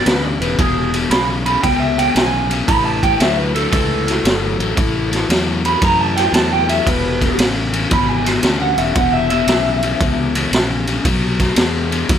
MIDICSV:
0, 0, Header, 1, 5, 480
1, 0, Start_track
1, 0, Tempo, 523560
1, 530, Time_signature, 4, 2, 24, 8
1, 11172, End_track
2, 0, Start_track
2, 0, Title_t, "Clean electric guitar"
2, 0, Program_c, 0, 27
2, 53, Note_on_c, 0, 71, 83
2, 213, Note_off_c, 0, 71, 0
2, 213, Note_on_c, 0, 74, 85
2, 367, Note_off_c, 0, 74, 0
2, 379, Note_on_c, 0, 71, 81
2, 530, Note_off_c, 0, 71, 0
2, 535, Note_on_c, 0, 68, 114
2, 845, Note_off_c, 0, 68, 0
2, 1016, Note_on_c, 0, 83, 105
2, 1169, Note_off_c, 0, 83, 0
2, 1336, Note_on_c, 0, 83, 90
2, 1489, Note_off_c, 0, 83, 0
2, 1492, Note_on_c, 0, 79, 84
2, 1647, Note_off_c, 0, 79, 0
2, 1647, Note_on_c, 0, 76, 77
2, 1805, Note_off_c, 0, 76, 0
2, 1818, Note_on_c, 0, 79, 96
2, 1970, Note_off_c, 0, 79, 0
2, 1985, Note_on_c, 0, 80, 89
2, 2291, Note_off_c, 0, 80, 0
2, 2457, Note_on_c, 0, 83, 121
2, 2610, Note_off_c, 0, 83, 0
2, 2615, Note_on_c, 0, 81, 93
2, 2769, Note_off_c, 0, 81, 0
2, 2780, Note_on_c, 0, 79, 94
2, 2932, Note_off_c, 0, 79, 0
2, 2934, Note_on_c, 0, 76, 86
2, 3089, Note_off_c, 0, 76, 0
2, 3094, Note_on_c, 0, 71, 87
2, 3247, Note_off_c, 0, 71, 0
2, 3251, Note_on_c, 0, 69, 88
2, 3394, Note_off_c, 0, 69, 0
2, 3405, Note_on_c, 0, 69, 112
2, 4813, Note_off_c, 0, 69, 0
2, 5187, Note_on_c, 0, 83, 103
2, 5336, Note_off_c, 0, 83, 0
2, 5356, Note_on_c, 0, 82, 89
2, 5501, Note_off_c, 0, 82, 0
2, 5506, Note_on_c, 0, 81, 83
2, 5648, Note_off_c, 0, 81, 0
2, 5652, Note_on_c, 0, 79, 108
2, 5808, Note_off_c, 0, 79, 0
2, 5816, Note_on_c, 0, 81, 98
2, 5970, Note_off_c, 0, 81, 0
2, 5982, Note_on_c, 0, 79, 93
2, 6133, Note_off_c, 0, 79, 0
2, 6138, Note_on_c, 0, 76, 98
2, 6291, Note_off_c, 0, 76, 0
2, 6303, Note_on_c, 0, 71, 116
2, 6763, Note_off_c, 0, 71, 0
2, 7271, Note_on_c, 0, 83, 101
2, 7417, Note_off_c, 0, 83, 0
2, 7417, Note_on_c, 0, 80, 84
2, 7586, Note_off_c, 0, 80, 0
2, 7586, Note_on_c, 0, 83, 101
2, 7749, Note_off_c, 0, 83, 0
2, 7749, Note_on_c, 0, 80, 87
2, 7895, Note_off_c, 0, 80, 0
2, 7899, Note_on_c, 0, 78, 91
2, 8052, Note_off_c, 0, 78, 0
2, 8052, Note_on_c, 0, 76, 91
2, 8204, Note_off_c, 0, 76, 0
2, 8208, Note_on_c, 0, 78, 113
2, 8364, Note_off_c, 0, 78, 0
2, 8373, Note_on_c, 0, 76, 102
2, 8515, Note_off_c, 0, 76, 0
2, 8526, Note_on_c, 0, 76, 117
2, 9457, Note_off_c, 0, 76, 0
2, 11172, End_track
3, 0, Start_track
3, 0, Title_t, "Overdriven electric guitar"
3, 0, Program_c, 1, 29
3, 57, Note_on_c, 1, 40, 83
3, 60, Note_on_c, 1, 49, 82
3, 342, Note_off_c, 1, 40, 0
3, 344, Note_off_c, 1, 49, 0
3, 384, Note_on_c, 1, 40, 85
3, 389, Note_on_c, 1, 49, 87
3, 521, Note_off_c, 1, 40, 0
3, 523, Note_off_c, 1, 49, 0
3, 541, Note_on_c, 1, 40, 76
3, 542, Note_on_c, 1, 47, 92
3, 825, Note_off_c, 1, 40, 0
3, 825, Note_off_c, 1, 47, 0
3, 865, Note_on_c, 1, 40, 74
3, 869, Note_on_c, 1, 47, 86
3, 1001, Note_off_c, 1, 40, 0
3, 1004, Note_off_c, 1, 47, 0
3, 1012, Note_on_c, 1, 40, 89
3, 1019, Note_on_c, 1, 49, 104
3, 1301, Note_off_c, 1, 40, 0
3, 1304, Note_off_c, 1, 49, 0
3, 1339, Note_on_c, 1, 40, 75
3, 1342, Note_on_c, 1, 49, 72
3, 1477, Note_off_c, 1, 40, 0
3, 1481, Note_off_c, 1, 49, 0
3, 1488, Note_on_c, 1, 40, 74
3, 1495, Note_on_c, 1, 47, 87
3, 1779, Note_off_c, 1, 40, 0
3, 1783, Note_off_c, 1, 47, 0
3, 1807, Note_on_c, 1, 40, 69
3, 1818, Note_on_c, 1, 47, 88
3, 1954, Note_off_c, 1, 40, 0
3, 1959, Note_off_c, 1, 47, 0
3, 1967, Note_on_c, 1, 40, 83
3, 1972, Note_on_c, 1, 49, 101
3, 2259, Note_off_c, 1, 40, 0
3, 2261, Note_off_c, 1, 49, 0
3, 2288, Note_on_c, 1, 40, 79
3, 2294, Note_on_c, 1, 49, 89
3, 2434, Note_off_c, 1, 40, 0
3, 2437, Note_off_c, 1, 49, 0
3, 2452, Note_on_c, 1, 45, 84
3, 2458, Note_on_c, 1, 52, 94
3, 2742, Note_off_c, 1, 45, 0
3, 2745, Note_off_c, 1, 52, 0
3, 2779, Note_on_c, 1, 45, 60
3, 2785, Note_on_c, 1, 52, 73
3, 2920, Note_off_c, 1, 45, 0
3, 2923, Note_off_c, 1, 52, 0
3, 2933, Note_on_c, 1, 45, 97
3, 2933, Note_on_c, 1, 54, 103
3, 3222, Note_off_c, 1, 45, 0
3, 3222, Note_off_c, 1, 54, 0
3, 3251, Note_on_c, 1, 45, 77
3, 3258, Note_on_c, 1, 54, 85
3, 3392, Note_off_c, 1, 45, 0
3, 3399, Note_off_c, 1, 54, 0
3, 3403, Note_on_c, 1, 45, 75
3, 3410, Note_on_c, 1, 52, 91
3, 3697, Note_off_c, 1, 45, 0
3, 3701, Note_off_c, 1, 52, 0
3, 3730, Note_on_c, 1, 45, 80
3, 3733, Note_on_c, 1, 52, 85
3, 3875, Note_off_c, 1, 45, 0
3, 3877, Note_off_c, 1, 52, 0
3, 3893, Note_on_c, 1, 45, 78
3, 3898, Note_on_c, 1, 54, 88
3, 4182, Note_off_c, 1, 45, 0
3, 4185, Note_off_c, 1, 54, 0
3, 4217, Note_on_c, 1, 54, 90
3, 4218, Note_on_c, 1, 45, 76
3, 4359, Note_off_c, 1, 54, 0
3, 4360, Note_off_c, 1, 45, 0
3, 4369, Note_on_c, 1, 52, 91
3, 4372, Note_on_c, 1, 45, 81
3, 4661, Note_off_c, 1, 52, 0
3, 4662, Note_off_c, 1, 45, 0
3, 4688, Note_on_c, 1, 45, 69
3, 4691, Note_on_c, 1, 52, 74
3, 4834, Note_off_c, 1, 45, 0
3, 4836, Note_off_c, 1, 52, 0
3, 4854, Note_on_c, 1, 45, 87
3, 4860, Note_on_c, 1, 54, 104
3, 5143, Note_off_c, 1, 45, 0
3, 5146, Note_off_c, 1, 54, 0
3, 5178, Note_on_c, 1, 45, 77
3, 5181, Note_on_c, 1, 54, 87
3, 5320, Note_off_c, 1, 45, 0
3, 5321, Note_off_c, 1, 54, 0
3, 5331, Note_on_c, 1, 45, 86
3, 5336, Note_on_c, 1, 52, 99
3, 5621, Note_off_c, 1, 45, 0
3, 5624, Note_off_c, 1, 52, 0
3, 5650, Note_on_c, 1, 45, 78
3, 5654, Note_on_c, 1, 52, 88
3, 5796, Note_off_c, 1, 45, 0
3, 5797, Note_off_c, 1, 52, 0
3, 5809, Note_on_c, 1, 45, 83
3, 5813, Note_on_c, 1, 54, 86
3, 6100, Note_off_c, 1, 45, 0
3, 6102, Note_off_c, 1, 54, 0
3, 6125, Note_on_c, 1, 45, 72
3, 6131, Note_on_c, 1, 54, 83
3, 6272, Note_off_c, 1, 45, 0
3, 6276, Note_off_c, 1, 54, 0
3, 6289, Note_on_c, 1, 40, 84
3, 6294, Note_on_c, 1, 47, 93
3, 6580, Note_off_c, 1, 40, 0
3, 6582, Note_off_c, 1, 47, 0
3, 6606, Note_on_c, 1, 40, 75
3, 6614, Note_on_c, 1, 47, 84
3, 6753, Note_off_c, 1, 40, 0
3, 6757, Note_off_c, 1, 47, 0
3, 6776, Note_on_c, 1, 40, 93
3, 6778, Note_on_c, 1, 49, 96
3, 7063, Note_off_c, 1, 40, 0
3, 7064, Note_off_c, 1, 49, 0
3, 7085, Note_on_c, 1, 40, 79
3, 7090, Note_on_c, 1, 49, 97
3, 7232, Note_off_c, 1, 40, 0
3, 7235, Note_off_c, 1, 49, 0
3, 7241, Note_on_c, 1, 40, 89
3, 7244, Note_on_c, 1, 47, 106
3, 7535, Note_off_c, 1, 40, 0
3, 7536, Note_off_c, 1, 47, 0
3, 7560, Note_on_c, 1, 40, 83
3, 7564, Note_on_c, 1, 47, 101
3, 7709, Note_off_c, 1, 40, 0
3, 7711, Note_off_c, 1, 47, 0
3, 7724, Note_on_c, 1, 40, 78
3, 7728, Note_on_c, 1, 49, 99
3, 8016, Note_off_c, 1, 40, 0
3, 8018, Note_off_c, 1, 49, 0
3, 8050, Note_on_c, 1, 40, 74
3, 8054, Note_on_c, 1, 49, 91
3, 8194, Note_off_c, 1, 40, 0
3, 8196, Note_off_c, 1, 49, 0
3, 8207, Note_on_c, 1, 40, 78
3, 8211, Note_on_c, 1, 47, 99
3, 8497, Note_off_c, 1, 40, 0
3, 8499, Note_off_c, 1, 47, 0
3, 8527, Note_on_c, 1, 40, 75
3, 8534, Note_on_c, 1, 47, 84
3, 8672, Note_off_c, 1, 40, 0
3, 8675, Note_off_c, 1, 47, 0
3, 8690, Note_on_c, 1, 40, 108
3, 8693, Note_on_c, 1, 49, 105
3, 8978, Note_off_c, 1, 40, 0
3, 8980, Note_off_c, 1, 49, 0
3, 9016, Note_on_c, 1, 40, 80
3, 9019, Note_on_c, 1, 49, 82
3, 9156, Note_off_c, 1, 40, 0
3, 9157, Note_off_c, 1, 49, 0
3, 9175, Note_on_c, 1, 40, 84
3, 9177, Note_on_c, 1, 47, 85
3, 9460, Note_off_c, 1, 40, 0
3, 9461, Note_off_c, 1, 47, 0
3, 9497, Note_on_c, 1, 40, 83
3, 9499, Note_on_c, 1, 47, 83
3, 9636, Note_off_c, 1, 40, 0
3, 9637, Note_off_c, 1, 47, 0
3, 9656, Note_on_c, 1, 40, 77
3, 9662, Note_on_c, 1, 49, 90
3, 9940, Note_off_c, 1, 40, 0
3, 9943, Note_off_c, 1, 49, 0
3, 9974, Note_on_c, 1, 40, 76
3, 9977, Note_on_c, 1, 49, 85
3, 10113, Note_off_c, 1, 40, 0
3, 10115, Note_off_c, 1, 49, 0
3, 10135, Note_on_c, 1, 47, 87
3, 10137, Note_on_c, 1, 54, 107
3, 10419, Note_off_c, 1, 47, 0
3, 10420, Note_off_c, 1, 54, 0
3, 10452, Note_on_c, 1, 47, 72
3, 10454, Note_on_c, 1, 54, 76
3, 10587, Note_off_c, 1, 47, 0
3, 10593, Note_off_c, 1, 54, 0
3, 10598, Note_on_c, 1, 47, 99
3, 10605, Note_on_c, 1, 56, 105
3, 10890, Note_off_c, 1, 47, 0
3, 10893, Note_off_c, 1, 56, 0
3, 10920, Note_on_c, 1, 47, 74
3, 10924, Note_on_c, 1, 56, 86
3, 11065, Note_off_c, 1, 47, 0
3, 11067, Note_off_c, 1, 56, 0
3, 11080, Note_on_c, 1, 47, 85
3, 11085, Note_on_c, 1, 54, 92
3, 11172, Note_off_c, 1, 47, 0
3, 11172, Note_off_c, 1, 54, 0
3, 11172, End_track
4, 0, Start_track
4, 0, Title_t, "Fingered electric bass"
4, 0, Program_c, 2, 33
4, 54, Note_on_c, 2, 38, 85
4, 336, Note_off_c, 2, 38, 0
4, 368, Note_on_c, 2, 28, 93
4, 510, Note_off_c, 2, 28, 0
4, 534, Note_on_c, 2, 28, 86
4, 958, Note_off_c, 2, 28, 0
4, 1007, Note_on_c, 2, 35, 90
4, 1434, Note_off_c, 2, 35, 0
4, 1500, Note_on_c, 2, 37, 90
4, 1922, Note_off_c, 2, 37, 0
4, 1972, Note_on_c, 2, 35, 88
4, 2397, Note_off_c, 2, 35, 0
4, 2457, Note_on_c, 2, 33, 83
4, 2880, Note_off_c, 2, 33, 0
4, 2932, Note_on_c, 2, 38, 82
4, 3358, Note_off_c, 2, 38, 0
4, 3415, Note_on_c, 2, 37, 91
4, 3839, Note_off_c, 2, 37, 0
4, 3883, Note_on_c, 2, 31, 85
4, 4172, Note_off_c, 2, 31, 0
4, 4207, Note_on_c, 2, 33, 96
4, 4351, Note_off_c, 2, 33, 0
4, 4376, Note_on_c, 2, 33, 91
4, 4799, Note_off_c, 2, 33, 0
4, 4847, Note_on_c, 2, 40, 84
4, 5275, Note_off_c, 2, 40, 0
4, 5334, Note_on_c, 2, 42, 90
4, 5758, Note_off_c, 2, 42, 0
4, 5798, Note_on_c, 2, 40, 96
4, 6229, Note_off_c, 2, 40, 0
4, 6292, Note_on_c, 2, 28, 92
4, 6716, Note_off_c, 2, 28, 0
4, 6767, Note_on_c, 2, 33, 100
4, 7194, Note_off_c, 2, 33, 0
4, 7257, Note_on_c, 2, 32, 93
4, 7679, Note_off_c, 2, 32, 0
4, 7728, Note_on_c, 2, 38, 101
4, 8013, Note_off_c, 2, 38, 0
4, 8045, Note_on_c, 2, 28, 102
4, 8188, Note_off_c, 2, 28, 0
4, 8682, Note_on_c, 2, 35, 93
4, 9109, Note_off_c, 2, 35, 0
4, 9175, Note_on_c, 2, 37, 85
4, 9596, Note_off_c, 2, 37, 0
4, 9639, Note_on_c, 2, 34, 95
4, 10066, Note_off_c, 2, 34, 0
4, 10127, Note_on_c, 2, 35, 96
4, 10550, Note_off_c, 2, 35, 0
4, 10602, Note_on_c, 2, 40, 84
4, 11026, Note_off_c, 2, 40, 0
4, 11083, Note_on_c, 2, 39, 101
4, 11172, Note_off_c, 2, 39, 0
4, 11172, End_track
5, 0, Start_track
5, 0, Title_t, "Drums"
5, 56, Note_on_c, 9, 51, 80
5, 68, Note_on_c, 9, 38, 107
5, 147, Note_off_c, 9, 51, 0
5, 160, Note_off_c, 9, 38, 0
5, 381, Note_on_c, 9, 51, 54
5, 473, Note_off_c, 9, 51, 0
5, 538, Note_on_c, 9, 36, 118
5, 538, Note_on_c, 9, 51, 83
5, 630, Note_off_c, 9, 36, 0
5, 630, Note_off_c, 9, 51, 0
5, 858, Note_on_c, 9, 51, 57
5, 950, Note_off_c, 9, 51, 0
5, 1017, Note_on_c, 9, 51, 88
5, 1030, Note_on_c, 9, 38, 113
5, 1109, Note_off_c, 9, 51, 0
5, 1121, Note_off_c, 9, 38, 0
5, 1338, Note_on_c, 9, 51, 60
5, 1429, Note_off_c, 9, 51, 0
5, 1499, Note_on_c, 9, 36, 118
5, 1500, Note_on_c, 9, 51, 97
5, 1513, Note_on_c, 9, 38, 33
5, 1591, Note_off_c, 9, 36, 0
5, 1592, Note_off_c, 9, 51, 0
5, 1604, Note_off_c, 9, 38, 0
5, 1822, Note_on_c, 9, 51, 61
5, 1913, Note_off_c, 9, 51, 0
5, 1978, Note_on_c, 9, 51, 83
5, 1991, Note_on_c, 9, 38, 118
5, 2069, Note_off_c, 9, 51, 0
5, 2082, Note_off_c, 9, 38, 0
5, 2298, Note_on_c, 9, 51, 66
5, 2390, Note_off_c, 9, 51, 0
5, 2458, Note_on_c, 9, 36, 122
5, 2460, Note_on_c, 9, 51, 92
5, 2550, Note_off_c, 9, 36, 0
5, 2551, Note_off_c, 9, 51, 0
5, 2778, Note_on_c, 9, 36, 79
5, 2780, Note_on_c, 9, 51, 62
5, 2869, Note_off_c, 9, 36, 0
5, 2871, Note_off_c, 9, 51, 0
5, 2936, Note_on_c, 9, 51, 88
5, 2949, Note_on_c, 9, 38, 116
5, 3027, Note_off_c, 9, 51, 0
5, 3040, Note_off_c, 9, 38, 0
5, 3260, Note_on_c, 9, 51, 58
5, 3352, Note_off_c, 9, 51, 0
5, 3415, Note_on_c, 9, 51, 90
5, 3416, Note_on_c, 9, 36, 120
5, 3428, Note_on_c, 9, 38, 36
5, 3507, Note_off_c, 9, 36, 0
5, 3507, Note_off_c, 9, 51, 0
5, 3520, Note_off_c, 9, 38, 0
5, 3740, Note_on_c, 9, 51, 65
5, 3753, Note_on_c, 9, 38, 32
5, 3832, Note_off_c, 9, 51, 0
5, 3845, Note_off_c, 9, 38, 0
5, 3898, Note_on_c, 9, 51, 81
5, 3911, Note_on_c, 9, 38, 116
5, 3990, Note_off_c, 9, 51, 0
5, 4003, Note_off_c, 9, 38, 0
5, 4219, Note_on_c, 9, 51, 52
5, 4310, Note_off_c, 9, 51, 0
5, 4376, Note_on_c, 9, 36, 116
5, 4376, Note_on_c, 9, 51, 84
5, 4467, Note_off_c, 9, 36, 0
5, 4468, Note_off_c, 9, 51, 0
5, 4700, Note_on_c, 9, 51, 57
5, 4713, Note_on_c, 9, 38, 35
5, 4792, Note_off_c, 9, 51, 0
5, 4805, Note_off_c, 9, 38, 0
5, 4859, Note_on_c, 9, 51, 90
5, 4872, Note_on_c, 9, 38, 120
5, 4951, Note_off_c, 9, 51, 0
5, 4963, Note_off_c, 9, 38, 0
5, 5179, Note_on_c, 9, 51, 56
5, 5271, Note_off_c, 9, 51, 0
5, 5332, Note_on_c, 9, 51, 89
5, 5334, Note_on_c, 9, 36, 121
5, 5424, Note_off_c, 9, 51, 0
5, 5426, Note_off_c, 9, 36, 0
5, 5660, Note_on_c, 9, 51, 61
5, 5673, Note_on_c, 9, 38, 35
5, 5751, Note_off_c, 9, 51, 0
5, 5764, Note_off_c, 9, 38, 0
5, 5812, Note_on_c, 9, 51, 91
5, 5825, Note_on_c, 9, 38, 115
5, 5903, Note_off_c, 9, 51, 0
5, 5916, Note_off_c, 9, 38, 0
5, 6135, Note_on_c, 9, 51, 62
5, 6227, Note_off_c, 9, 51, 0
5, 6295, Note_on_c, 9, 36, 112
5, 6296, Note_on_c, 9, 51, 89
5, 6387, Note_off_c, 9, 36, 0
5, 6388, Note_off_c, 9, 51, 0
5, 6615, Note_on_c, 9, 36, 82
5, 6617, Note_on_c, 9, 51, 63
5, 6629, Note_on_c, 9, 38, 32
5, 6706, Note_off_c, 9, 36, 0
5, 6708, Note_off_c, 9, 51, 0
5, 6721, Note_off_c, 9, 38, 0
5, 6771, Note_on_c, 9, 51, 103
5, 6784, Note_on_c, 9, 38, 127
5, 6863, Note_off_c, 9, 51, 0
5, 6876, Note_off_c, 9, 38, 0
5, 7091, Note_on_c, 9, 51, 61
5, 7183, Note_off_c, 9, 51, 0
5, 7251, Note_on_c, 9, 51, 88
5, 7255, Note_on_c, 9, 36, 115
5, 7264, Note_on_c, 9, 38, 32
5, 7342, Note_off_c, 9, 51, 0
5, 7347, Note_off_c, 9, 36, 0
5, 7355, Note_off_c, 9, 38, 0
5, 7575, Note_on_c, 9, 51, 69
5, 7588, Note_on_c, 9, 38, 33
5, 7667, Note_off_c, 9, 51, 0
5, 7679, Note_off_c, 9, 38, 0
5, 7726, Note_on_c, 9, 51, 87
5, 7739, Note_on_c, 9, 38, 108
5, 7818, Note_off_c, 9, 51, 0
5, 7831, Note_off_c, 9, 38, 0
5, 8046, Note_on_c, 9, 51, 60
5, 8138, Note_off_c, 9, 51, 0
5, 8209, Note_on_c, 9, 51, 80
5, 8212, Note_on_c, 9, 36, 125
5, 8301, Note_off_c, 9, 51, 0
5, 8304, Note_off_c, 9, 36, 0
5, 8528, Note_on_c, 9, 51, 56
5, 8619, Note_off_c, 9, 51, 0
5, 8687, Note_on_c, 9, 51, 93
5, 8700, Note_on_c, 9, 38, 124
5, 8779, Note_off_c, 9, 51, 0
5, 8792, Note_off_c, 9, 38, 0
5, 9008, Note_on_c, 9, 51, 59
5, 9100, Note_off_c, 9, 51, 0
5, 9172, Note_on_c, 9, 51, 80
5, 9173, Note_on_c, 9, 36, 122
5, 9264, Note_off_c, 9, 51, 0
5, 9265, Note_off_c, 9, 36, 0
5, 9491, Note_on_c, 9, 51, 69
5, 9582, Note_off_c, 9, 51, 0
5, 9652, Note_on_c, 9, 51, 84
5, 9665, Note_on_c, 9, 38, 116
5, 9744, Note_off_c, 9, 51, 0
5, 9757, Note_off_c, 9, 38, 0
5, 9968, Note_on_c, 9, 51, 55
5, 10060, Note_off_c, 9, 51, 0
5, 10130, Note_on_c, 9, 51, 91
5, 10131, Note_on_c, 9, 36, 118
5, 10221, Note_off_c, 9, 51, 0
5, 10223, Note_off_c, 9, 36, 0
5, 10448, Note_on_c, 9, 51, 63
5, 10449, Note_on_c, 9, 36, 73
5, 10461, Note_on_c, 9, 38, 35
5, 10540, Note_off_c, 9, 51, 0
5, 10541, Note_off_c, 9, 36, 0
5, 10552, Note_off_c, 9, 38, 0
5, 10600, Note_on_c, 9, 51, 97
5, 10613, Note_on_c, 9, 38, 114
5, 10692, Note_off_c, 9, 51, 0
5, 10705, Note_off_c, 9, 38, 0
5, 10929, Note_on_c, 9, 51, 63
5, 11021, Note_off_c, 9, 51, 0
5, 11085, Note_on_c, 9, 51, 94
5, 11089, Note_on_c, 9, 36, 117
5, 11172, Note_off_c, 9, 36, 0
5, 11172, Note_off_c, 9, 51, 0
5, 11172, End_track
0, 0, End_of_file